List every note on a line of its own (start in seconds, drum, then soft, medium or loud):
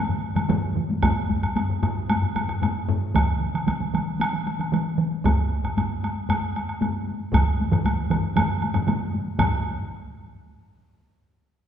0.09 taiko low-mid medium
0.09 taiko mid medium
0.35 taiko low-mid medium
0.35 taiko mid medium
0.35 taiko high medium
0.35 high woodblock soft
0.49 taiko low-mid loud
0.49 taiko mid medium
0.49 taiko high medium
0.49 high woodblock soft
0.75 taiko low-mid medium
0.75 taiko mid medium
0.89 taiko high medium
1.02 taiko loud
1.02 taiko low-mid medium
1.02 taiko high medium
1.02 high woodblock medium
1.16 taiko high soft
1.29 taiko low-mid medium
1.29 taiko high medium
1.43 taiko low-mid medium
1.43 taiko high soft
1.43 high woodblock soft
1.55 taiko low-mid medium
1.55 taiko high medium
1.55 high woodblock soft
1.69 taiko low-mid medium
1.69 taiko high soft
1.82 taiko low-mid loud
1.82 taiko high medium
1.82 high woodblock soft
2.08 taiko low-mid medium
2.08 taiko high medium
2.08 high woodblock medium
2.22 taiko low-mid medium
2.22 taiko high soft
2.35 taiko low-mid medium
2.35 taiko high medium
2.35 high woodblock soft
2.49 taiko low-mid medium
2.49 high woodblock soft
2.62 taiko low-mid medium
2.62 taiko high medium
2.62 high woodblock soft
2.76 taiko high soft
2.88 taiko low-mid loud
2.88 taiko high medium
3.01 taiko high soft
3.15 taiko medium
3.15 taiko mid medium
3.15 taiko high medium
3.15 high woodblock medium
3.28 taiko high soft
3.41 taiko mid medium
3.54 taiko mid medium
3.54 taiko high soft
3.54 high woodblock soft
3.67 taiko medium
3.67 taiko mid medium
3.67 taiko high medium
3.67 high woodblock soft
3.80 taiko mid medium
3.80 taiko high soft
3.94 taiko mid medium
3.94 taiko high medium
3.94 high woodblock soft
4.07 taiko high soft
4.20 taiko mid medium
4.20 taiko high medium
4.20 high woodblock medium
4.33 taiko mid medium
4.33 taiko high soft
4.46 taiko mid medium
4.46 taiko high soft
4.46 high woodblock soft
4.60 taiko mid medium
4.60 high woodblock soft
4.72 taiko mid loud
4.72 taiko high medium
4.72 high woodblock soft
4.86 taiko high soft
4.98 taiko mid loud
5.12 taiko high soft
5.25 taiko loud
5.25 taiko low-mid medium
5.25 taiko high medium
5.25 high woodblock soft
5.38 taiko high soft
5.64 taiko low-mid medium
5.64 taiko high soft
5.64 high woodblock soft
5.77 taiko low-mid medium
5.77 taiko high medium
5.77 high woodblock soft
5.91 taiko high soft
6.03 taiko high medium
6.03 high woodblock soft
6.17 taiko high soft
6.29 taiko low-mid medium
6.29 taiko high medium
6.29 high woodblock medium
6.42 taiko high soft
6.56 taiko high soft
6.56 high woodblock soft
6.69 high woodblock soft
6.81 taiko low-mid medium
6.81 taiko high medium
6.81 high woodblock soft
6.95 taiko high soft
7.07 taiko high soft
7.20 taiko high soft
7.33 taiko medium
7.33 taiko low-mid medium
7.33 taiko mid medium
7.33 taiko high medium
7.33 high woodblock medium
7.47 taiko high soft
7.60 taiko high soft
7.72 taiko low-mid medium
7.72 taiko mid medium
7.72 taiko high soft
7.72 high woodblock soft
7.85 taiko medium
7.85 taiko high medium
7.85 high woodblock soft
7.98 taiko high soft
8.10 taiko low-mid medium
8.10 taiko mid medium
8.10 taiko high medium
8.10 high woodblock soft
8.24 taiko high soft
8.36 taiko low-mid medium
8.36 taiko mid medium
8.36 taiko high medium
8.36 high woodblock medium
8.50 taiko high soft
8.62 taiko high soft
8.62 high woodblock soft
8.74 taiko low-mid medium
8.74 taiko mid medium
8.74 taiko high soft
8.74 high woodblock soft
8.87 taiko low-mid medium
8.87 taiko mid loud
8.87 taiko high medium
8.87 high woodblock soft
9.02 taiko high soft
9.14 taiko high medium
9.27 taiko high soft
9.39 taiko medium
9.39 taiko low-mid loud
9.39 taiko mid medium
9.39 taiko high medium
9.39 high woodblock medium